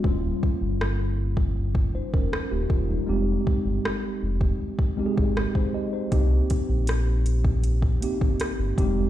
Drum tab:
HH |----------------|----------------|x-x-x-x-x-x-x-x-|
SD |----r-------r---|----r-------r---|----r-------r---|
BD |o-o----o-o-o--o-|--o----o-o-o-o--|o-o----o-o-o--o-|